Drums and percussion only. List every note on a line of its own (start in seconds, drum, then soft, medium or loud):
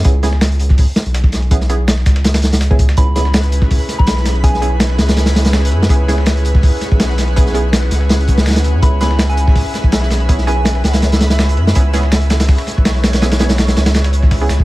0.04 kick loud
0.04 closed hi-hat medium
0.23 snare soft
0.23 closed hi-hat medium
0.33 snare medium
0.41 snare loud
0.41 closed hi-hat medium
0.52 closed hi-hat soft
0.59 closed hi-hat medium
0.69 kick medium
0.69 snare soft
0.78 kick loud
0.78 closed hi-hat medium
0.78 open hi-hat medium
0.96 snare loud
0.96 snare soft
0.96 closed hi-hat medium
1.06 closed hi-hat soft
1.14 snare loud
1.14 closed hi-hat medium
1.24 kick medium
1.24 snare soft
1.32 snare medium
1.32 closed hi-hat medium
1.43 closed hi-hat soft
1.51 kick loud
1.51 closed hi-hat medium
1.61 snare soft
1.70 closed hi-hat medium
1.88 snare loud
1.88 closed hi-hat medium
1.98 snare medium
2.06 kick medium
2.06 snare loud
2.06 closed hi-hat medium
2.16 snare loud
2.16 closed hi-hat medium
2.24 snare loud
2.24 closed hi-hat medium
2.34 snare loud
2.34 closed hi-hat medium
2.42 snare loud
2.42 closed hi-hat medium
2.52 snare soft
2.52 snare loud
2.52 closed hi-hat medium
2.61 snare soft
2.61 snare loud
2.61 closed hi-hat loud
2.61 closed hi-hat medium
2.71 kick medium
2.79 kick loud
2.79 closed hi-hat medium
2.89 snare loud
2.89 closed hi-hat medium
2.97 kick loud
2.97 closed hi-hat medium
3.16 snare soft
3.16 closed hi-hat medium
3.25 snare medium
3.34 snare loud
3.34 closed hi-hat medium
3.43 closed hi-hat soft
3.52 closed hi-hat medium
3.62 kick loud
3.62 snare soft
3.71 kick loud
3.71 closed hi-hat medium
3.71 open hi-hat medium
3.88 snare soft
3.88 closed hi-hat medium
3.99 kick medium
4.07 snare loud
4.07 closed hi-hat medium
4.17 snare soft
4.25 snare medium
4.25 closed hi-hat medium
4.35 closed hi-hat soft
4.44 kick loud
4.44 closed hi-hat medium
4.54 snare soft
4.62 closed hi-hat medium
4.80 snare loud
4.80 closed hi-hat medium
4.90 snare medium
4.98 snare loud
4.98 closed hi-hat medium
5.08 snare soft
5.08 snare loud
5.08 closed hi-hat medium
5.17 snare loud
5.17 closed hi-hat medium
5.26 snare loud
5.26 closed hi-hat medium
5.35 snare loud
5.35 closed hi-hat medium
5.45 snare soft
5.45 snare loud
5.45 closed hi-hat medium
5.53 snare loud
5.53 closed hi-hat medium
5.65 closed hi-hat medium
5.72 closed hi-hat medium
5.82 snare loud
5.89 kick loud
5.89 closed hi-hat medium
6.08 snare soft
6.08 closed hi-hat medium
6.18 snare medium
6.26 snare loud
6.26 closed hi-hat medium
6.37 closed hi-hat soft
6.45 closed hi-hat medium
6.54 kick loud
6.54 snare soft
6.63 kick loud
6.63 closed hi-hat medium
6.63 open hi-hat medium
6.81 snare soft
6.81 closed hi-hat medium
6.92 kick loud
7.00 snare loud
7.00 closed hi-hat medium
7.09 snare soft
7.18 snare medium
7.18 closed hi-hat medium
7.28 closed hi-hat soft
7.36 kick loud
7.36 closed hi-hat medium
7.46 snare soft
7.55 closed hi-hat medium
7.73 snare loud
7.73 closed hi-hat medium
7.83 snare medium
7.91 snare soft
7.91 closed hi-hat medium
8.01 snare soft
8.09 snare loud
8.09 closed hi-hat medium
8.20 closed hi-hat soft
8.28 kick medium
8.28 closed hi-hat medium
8.37 snare soft
8.37 snare loud
8.46 snare loud
8.46 snare medium
8.46 closed hi-hat loud
8.46 closed hi-hat medium
8.50 snare medium
8.50 closed hi-hat medium
8.56 snare loud
8.56 closed hi-hat medium
8.64 closed hi-hat medium
8.83 kick loud
8.83 closed hi-hat medium
9.01 snare soft
9.01 closed hi-hat medium
9.11 snare medium
9.19 snare loud
9.19 closed hi-hat medium
9.30 closed hi-hat soft
9.37 closed hi-hat medium
9.47 kick loud
9.47 snare soft
9.55 kick loud
9.55 closed hi-hat medium
9.55 open hi-hat medium
9.74 snare soft
9.74 closed hi-hat medium
9.84 kick medium
9.92 snare loud
9.92 closed hi-hat medium
9.92 closed hi-hat loud
10.02 snare soft
10.11 snare medium
10.11 closed hi-hat medium
10.20 closed hi-hat soft
10.29 kick loud
10.29 closed hi-hat medium
10.38 snare soft
10.47 closed hi-hat medium
10.65 snare loud
10.65 closed hi-hat medium
10.65 closed hi-hat loud
10.75 snare medium
10.84 snare loud
10.84 closed hi-hat medium
10.93 snare soft
10.93 snare loud
10.93 closed hi-hat medium
11.02 snare loud
11.02 closed hi-hat medium
11.12 snare loud
11.12 closed hi-hat medium
11.21 snare loud
11.21 closed hi-hat medium
11.30 snare loud
11.30 snare soft
11.30 closed hi-hat medium
11.39 snare loud
11.39 closed hi-hat medium
11.49 closed hi-hat medium
11.57 closed hi-hat medium
11.67 snare loud
11.75 kick loud
11.75 closed hi-hat loud
11.75 closed hi-hat medium
11.93 snare soft
11.93 closed hi-hat medium
12.03 snare medium
12.12 snare loud
12.12 closed hi-hat medium
12.22 closed hi-hat soft
12.30 snare loud
12.30 closed hi-hat medium
12.40 snare loud
12.40 closed hi-hat medium
12.49 kick loud
12.49 snare loud
12.49 closed hi-hat medium
12.49 open hi-hat medium
12.58 snare loud
12.58 closed hi-hat medium
12.67 snare soft
12.67 closed hi-hat medium
12.78 kick medium
12.85 snare loud
12.85 closed hi-hat medium
12.95 snare soft
13.04 snare loud
13.04 closed hi-hat medium
13.13 snare loud
13.13 closed hi-hat medium
13.22 snare loud
13.22 snare soft
13.22 closed hi-hat medium
13.32 snare loud
13.32 closed hi-hat medium
13.39 snare loud
13.39 snare soft
13.39 closed hi-hat medium
13.49 snare loud
13.49 snare soft
13.49 closed hi-hat medium
13.58 snare loud
13.58 closed hi-hat medium
13.68 snare soft
13.68 snare loud
13.68 closed hi-hat medium
13.77 snare soft
13.77 snare loud
13.77 closed hi-hat medium
13.86 snare loud
13.86 closed hi-hat medium
13.94 snare loud
13.94 closed hi-hat medium
14.04 snare loud
14.04 closed hi-hat medium
14.04 closed hi-hat soft
14.13 closed hi-hat medium
14.23 kick medium
14.23 snare soft
14.31 kick loud
14.31 snare loud
14.31 closed hi-hat medium
14.31 open hi-hat medium
14.49 snare loud
14.49 snare soft
14.49 closed hi-hat medium
14.60 kick medium